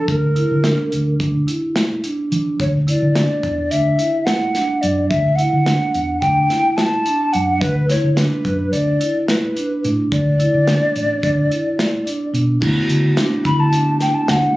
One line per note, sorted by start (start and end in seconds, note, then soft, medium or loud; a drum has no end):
0.08 0.42 D2 medium
0.08 1.17 A#4 medium
0.08 kick medium
0.08 closed hi-hat medium
0.36 0.61 E4 medium
0.36 closed hi-hat soft
0.51 0.73 D3 medium
0.64 1.14 D4 medium
0.64 snare medium
0.64 closed hi-hat medium
0.92 1.15 D2 medium
0.92 closed hi-hat medium
1.20 1.42 D2 medium
1.20 1.45 D4 medium
1.20 kick medium
1.20 closed hi-hat medium
1.47 1.98 E4 medium
1.47 closed hi-hat medium
1.76 snare medium
1.76 closed hi-hat medium
2.03 2.29 D4 medium
2.03 closed hi-hat medium
2.31 2.54 E3 medium
2.31 2.56 D4 medium
2.31 closed hi-hat medium
2.60 2.93 D2 medium
2.60 2.67 C#5 medium
2.60 kick medium
2.60 closed hi-hat medium
2.87 3.12 E4 medium
2.87 3.73 D5 medium
2.87 closed hi-hat medium
3.02 3.24 D3 medium
3.15 3.65 D4 medium
3.15 snare loud
3.15 closed hi-hat medium
3.43 3.66 E2 medium
3.43 kick medium
3.43 closed hi-hat soft
3.70 3.94 D2 medium
3.70 3.96 D4 medium
3.70 4.27 E5 medium
3.70 closed hi-hat medium
3.98 4.49 E4 medium
3.98 closed hi-hat medium
4.25 4.83 F#5 medium
4.25 snare medium
4.25 closed hi-hat medium
4.54 4.79 D4 medium
4.54 snare soft
4.54 closed hi-hat medium
4.81 5.05 F#2 medium
4.81 5.08 D4 medium
4.81 5.08 D5 medium
4.81 closed hi-hat medium
5.09 5.44 D2 medium
5.09 5.37 E5 medium
5.09 kick medium
5.09 closed hi-hat medium
5.35 5.63 E4 medium
5.35 6.19 F#5 medium
5.35 closed hi-hat medium
5.53 5.75 D3 medium
5.66 6.16 D4 medium
5.66 snare medium
5.66 closed hi-hat medium
5.94 6.17 E2 medium
5.94 closed hi-hat soft
6.20 6.45 D2 medium
6.20 6.47 D4 medium
6.20 6.78 G5 medium
6.20 kick medium
6.20 closed hi-hat medium
6.50 7.00 E4 medium
6.50 snare soft
6.50 closed hi-hat medium
6.77 7.34 A5 medium
6.77 snare medium
6.77 closed hi-hat medium
7.05 7.30 D4 medium
7.05 closed hi-hat medium
7.33 7.57 F#2 medium
7.33 7.58 D4 medium
7.33 7.62 F#5 medium
7.33 closed hi-hat soft
7.61 7.95 D2 loud
7.61 7.89 B4 medium
7.61 kick medium
7.61 closed hi-hat medium
7.89 8.14 E4 medium
7.89 8.15 C#5 medium
7.89 snare soft
7.89 closed hi-hat medium
8.04 8.26 D3 medium
8.16 8.66 D4 medium
8.16 8.74 B4 medium
8.16 snare medium
8.16 closed hi-hat medium
8.45 8.67 F#2 medium
8.45 kick medium
8.45 closed hi-hat medium
8.72 8.95 D2 medium
8.72 8.97 D4 medium
8.72 9.28 D5 medium
8.72 closed hi-hat medium
9.00 9.50 E4 medium
9.00 closed hi-hat medium
9.28 9.80 B4 medium
9.28 snare medium
9.28 closed hi-hat medium
9.56 9.81 D4 medium
9.56 closed hi-hat medium
9.83 10.07 A2 medium
9.83 10.09 D4 medium
9.83 closed hi-hat soft
10.12 10.45 D2 loud
10.12 12.30 D5 loud
10.12 kick medium
10.12 closed hi-hat medium
10.39 10.64 E4 medium
10.39 closed hi-hat soft
10.54 10.76 D3 medium
10.67 11.17 D4 medium
10.67 snare medium
10.67 closed hi-hat medium
10.96 11.18 A1 medium
10.96 closed hi-hat medium
11.22 11.45 D2 medium
11.22 11.47 D4 medium
11.22 kick loud
11.22 closed hi-hat medium
11.50 12.00 E4 medium
11.50 closed hi-hat medium
11.79 snare medium
11.79 closed hi-hat medium
12.06 12.31 D4 medium
12.06 closed hi-hat medium
12.33 12.56 B2 medium
12.33 12.59 D4 medium
12.33 closed hi-hat medium
12.60 12.73 D2 loud
12.60 14.57 A3 medium
12.60 14.57 B3 medium
12.60 14.57 E4 medium
12.60 13.11 F#4 medium
12.60 14.57 F#4 medium
12.60 kick medium
12.60 crash medium
12.89 13.12 D3 medium
12.89 closed hi-hat medium
13.17 13.42 D4 medium
13.17 snare medium
13.17 closed hi-hat medium
13.44 14.12 D3 medium
13.44 13.70 E4 medium
13.44 13.61 B5 medium
13.44 kick medium
13.44 closed hi-hat soft
13.60 14.01 A5 medium
13.72 13.97 D4 medium
13.72 closed hi-hat medium
14.00 14.50 D4 medium
14.00 14.16 G5 medium
14.00 snare soft
14.00 closed hi-hat medium
14.14 14.30 A5 medium
14.28 14.40 D2 medium
14.28 14.56 F#5 medium
14.28 snare medium
14.28 closed hi-hat medium